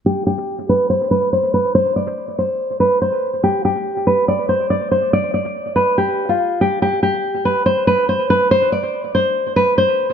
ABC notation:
X:1
M:4/4
L:1/16
Q:1/4=142
K:Gphr
V:1 name="Nylon-string guitar"
G2 G4 =B2 c2 B2 c2 B2 | c2 d4 c4 =B2 c4 | G2 G4 =B2 d2 c2 d2 c2 | d2 d4 =B2 G3 F3 G2 |
G2 G4 =B2 c2 B2 c2 B2 | c2 d4 c4 =B2 c4 |]